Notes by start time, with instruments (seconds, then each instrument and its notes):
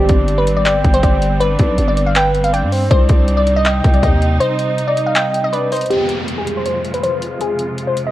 Already playing: string section G3 B3 C4, synth pluck G4, soft synth lead D5
0.09 808-style bass G1, kick, closed hi-hat
0.28 closed hi-hat
0.38 synth pluck B4
0.47 808-style bass G#1, closed hi-hat
0.56 synth pluck D5
0.65 808-style bass G1, synth pluck D5, soft synth lead G5, clap, closed hi-hat
0.84 808-style bass G1, kick, closed hi-hat
0.94 synth pluck C5, closed hi-hat
1.03 808-style bass G1, synth pluck D5, kick, closed hi-hat
1.22 closed hi-hat
1.40 synth pluck B4, soft synth lead D5, closed hi-hat
1.59 808-style bass B1, kick, closed hi-hat
1.78 808-style bass G1, closed hi-hat
1.88 synth pluck D5
1.97 closed hi-hat
2.06 synth pluck F5
2.15 soft synth lead B4, synth pluck G5, clap, closed hi-hat
2.34 closed hi-hat
2.44 synth pluck F5, closed hi-hat
2.52 soft synth lead D5, synth pluck G5, closed hi-hat
2.63 808-style bass G2
2.72 soft synth lead C5, open hi-hat
2.90 808-style bass C2, string section C3 D#4, synth pluck C5, soft synth lead D5, kick, closed hi-hat
3.09 808-style bass C2, kick, closed hi-hat
3.28 closed hi-hat
3.37 synth pluck D5
3.47 closed hi-hat
3.56 synth pluck D#5
3.65 synth pluck D#5, soft synth lead G5, clap, closed hi-hat
3.84 808-style bass C2, kick, closed hi-hat
3.94 synth pluck D5, closed hi-hat
4.03 808-style bass D#2, synth pluck D#5, kick, closed hi-hat
4.22 closed hi-hat
4.40 synth pluck C5, soft synth lead D#5, closed hi-hat
4.59 closed hi-hat
4.78 closed hi-hat
4.88 synth pluck D5
4.97 closed hi-hat
5.06 synth pluck F5
5.15 synth pluck G5, clap, closed hi-hat
5.34 closed hi-hat
5.44 synth pluck D#5
5.53 synth pluck B4, soft synth lead D5, closed hi-hat
5.71 synth pluck C5, soft synth lead D#5, closed hi-hat, open hi-hat
5.76 closed hi-hat
5.81 closed hi-hat
5.86 closed hi-hat
5.90 string section F2 C3 G#3 F4, synth pluck G4, closed hi-hat, downlifter
6.09 closed hi-hat
6.28 closed hi-hat
6.38 synth pluck G#4
6.47 closed hi-hat
6.57 synth pluck C5
6.65 synth pluck C5, closed hi-hat
6.84 closed hi-hat
6.94 synth pluck B4, closed hi-hat
7.03 synth pluck C5, closed hi-hat
7.22 closed hi-hat
7.41 synth pluck G#4, closed hi-hat
7.59 closed hi-hat
7.78 closed hi-hat
7.87 synth pluck C5
7.97 closed hi-hat
8.07 synth pluck D#5